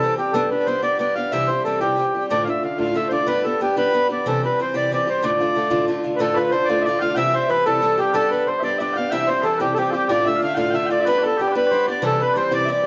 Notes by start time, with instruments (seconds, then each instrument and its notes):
Already playing: accordion A4
0.02 steel-string acoustic guitar E3 G3 C4 G4
0.18 steel-string acoustic guitar G3 C4 G4, accordion G4
0.33 steel-string acoustic guitar G3 B3 D4 G4, accordion A4
0.51 steel-string acoustic guitar B3 D4 G4, accordion B4
0.66 steel-string acoustic guitar G3 B3 D4 G4, accordion C5
0.82 steel-string acoustic guitar G3 B3 D4 G4, accordion D5
0.99 steel-string acoustic guitar G3 B3 D4 G4, accordion D5
1.15 steel-string acoustic guitar B3 D4 G4, accordion F5
1.31 steel-string acoustic guitar C3 E3 G3 C4 G4, accordion E5
1.47 steel-string acoustic guitar G3 C4 G4, accordion C5
1.64 steel-string acoustic guitar E3 G3 C4 G4, accordion A4
1.80 steel-string acoustic guitar C3 E3 G3 C4 G4, accordion G4
1.97 steel-string acoustic guitar E3 G3 C4 G4
2.14 steel-string acoustic guitar G3 C4 G4
2.30 steel-string acoustic guitar D2 A2 D3 A3 D4 F4, accordion D5
2.45 steel-string acoustic guitar D4 F4, accordion F5
2.49 steel-string acoustic guitar D3 A3, accordion E5
2.63 steel-string acoustic guitar D3 A3 D4 F4, accordion F5
2.78 steel-string acoustic guitar D2 A2 D3 A3 D4 F4, accordion F5
2.94 steel-string acoustic guitar D3 A3 D4 F4, accordion E5
3.09 steel-string acoustic guitar A3 D4 F4, accordion C5
3.13 steel-string acoustic guitar D3, accordion D5
3.27 steel-string acoustic guitar G3 B3 D4 G4, accordion B4
3.44 steel-string acoustic guitar B3 D4 G4, accordion A4
3.61 steel-string acoustic guitar G3 B3 D4 G4, accordion G4
3.76 steel-string acoustic guitar G3 B3 D4 G4, accordion B4
3.94 steel-string acoustic guitar G3 B3 D4 G4
4.09 steel-string acoustic guitar B3 D4 G4, accordion D5
4.26 steel-string acoustic guitar C3 E3 G3 C4 G4, accordion A4
4.43 steel-string acoustic guitar G3 C4 G4, accordion B4
4.59 steel-string acoustic guitar E3 G3 C4 G4, accordion C5
4.74 steel-string acoustic guitar C3 E3 G3 C4 G4, accordion D5
4.91 steel-string acoustic guitar E3 G3 C4 G4, accordion D5
5.07 steel-string acoustic guitar G3 C4 G4, accordion C5
5.22 steel-string acoustic guitar D2 A2 D3 A3 D4 F4, accordion D5
5.40 steel-string acoustic guitar D3 A3 D4 F4
5.55 steel-string acoustic guitar D3 A3 D4 F4
5.70 steel-string acoustic guitar D2 A2 D3 A3 D4 F4
5.88 steel-string acoustic guitar D3 A3 D4 F4
6.04 steel-string acoustic guitar D3 A3 D4 F4
6.16 steel-string acoustic guitar D2 A2 D3, accordion B4
6.20 steel-string acoustic guitar A3 D4 F4, accordion A4, bagpipes A4
6.34 steel-string acoustic guitar D3 A3 D4 F4, accordion B4, bagpipes B4 D5
6.51 steel-string acoustic guitar D3 A3 D4 F4, accordion C5, bagpipes C5
6.65 steel-string acoustic guitar F4, accordion D5, bagpipes D5
6.69 steel-string acoustic guitar D2 A2 D3 A3 D4
6.82 accordion D5, bagpipes E5
6.86 steel-string acoustic guitar D3 A3 D4 F4, bagpipes D5
6.99 steel-string acoustic guitar D3 A3 D4 F4, accordion F5, bagpipes F5 G5
7.15 steel-string acoustic guitar C3 E3 G3 C4 G4, accordion E5, bagpipes E5 G5
7.34 steel-string acoustic guitar G3 C4 G4, accordion C5
7.49 steel-string acoustic guitar E3 G3 C4 G4, accordion B4, bagpipes B4
7.65 steel-string acoustic guitar C3 E3 G3 C4 G4, accordion A4, bagpipes A4
7.82 steel-string acoustic guitar E3 G3 C4 G4
7.98 steel-string acoustic guitar G3 C4 G4, accordion G4, bagpipes G4
8.12 steel-string acoustic guitar G3 B3 D4 G4, accordion A4, bagpipes A4 B4
8.31 steel-string acoustic guitar B3 D4 G4, accordion B4
8.47 steel-string acoustic guitar G3 B3 D4 G4, accordion C5, bagpipes C5
8.59 steel-string acoustic guitar B3 D4 G4, bagpipes E5
8.63 steel-string acoustic guitar G3, bagpipes D5, accordion D5
8.78 steel-string acoustic guitar G3 B3 D4 G4, accordion D5, bagpipes D5 E5
8.93 steel-string acoustic guitar G4, accordion F5, bagpipes G5
8.97 steel-string acoustic guitar B3 D4, bagpipes F5
9.10 steel-string acoustic guitar C3 E3 G3 C4 G4, accordion E5, bagpipes E5 G5
9.27 steel-string acoustic guitar G3 C4 G4, accordion C5, bagpipes C5
9.42 steel-string acoustic guitar E3 G3 C4 G4, bagpipes G4, accordion A4
9.46 bagpipes A4
9.58 steel-string acoustic guitar C3 E3 G3 C4 G4, accordion G4, bagpipes G4 B4
9.74 steel-string acoustic guitar E3 G3 C4, accordion A4, bagpipes A4
9.78 bagpipes G4, steel-string acoustic guitar G4, accordion G4
9.90 accordion F4, steel-string acoustic guitar G4, bagpipes G4 A4
9.94 steel-string acoustic guitar G3 C4, accordion G4
10.08 steel-string acoustic guitar D2 A2 D3 A3 D4 F4, bagpipes D5, accordion D5
10.24 steel-string acoustic guitar D3 A3 D4 F4, bagpipes E5, accordion E5
10.35 bagpipes F5
10.41 steel-string acoustic guitar D3 A3 D4 F4, accordion F5
10.46 bagpipes E5
10.54 steel-string acoustic guitar D2 A2 D3 A3 D4 F4, bagpipes F5 G5, accordion F5
10.70 steel-string acoustic guitar D3, accordion E5, bagpipes G5
10.74 steel-string acoustic guitar A3 D4 F4, bagpipes E5
10.86 steel-string acoustic guitar F4, bagpipes D5 G5
10.90 steel-string acoustic guitar D3 A3 D4, accordion D5
11.01 bagpipes E5
11.05 steel-string acoustic guitar G3 B3 D4 G4, bagpipes B4, accordion B4
11.18 bagpipes D5
11.23 steel-string acoustic guitar B3 D4 G4, bagpipes A4, accordion A4
11.37 steel-string acoustic guitar G3 B3 D4 G4, bagpipes G4, accordion G4
11.48 bagpipes D5
11.52 steel-string acoustic guitar B3 D4 G4, bagpipes B4
11.56 steel-string acoustic guitar G3, accordion B4
11.67 bagpipes D5
11.71 steel-string acoustic guitar G3 B3 D4 G4, bagpipes C5
11.88 steel-string acoustic guitar B3 D4 G4, bagpipes D5, accordion D5
12.02 steel-string acoustic guitar C3 E3 G3 C4 G4, bagpipes A4, accordion A4
12.20 steel-string acoustic guitar G3 C4 G4, bagpipes B4, accordion B4
12.34 steel-string acoustic guitar E3 G3 C4 G4, accordion C5, bagpipes C5 D5
12.51 steel-string acoustic guitar C3 E3 G3 C4 G4, bagpipes D5, accordion D5
12.65 steel-string acoustic guitar E3 G3, bagpipes E5
12.70 steel-string acoustic guitar C4 G4, bagpipes D5, accordion D5
12.83 steel-string acoustic guitar G4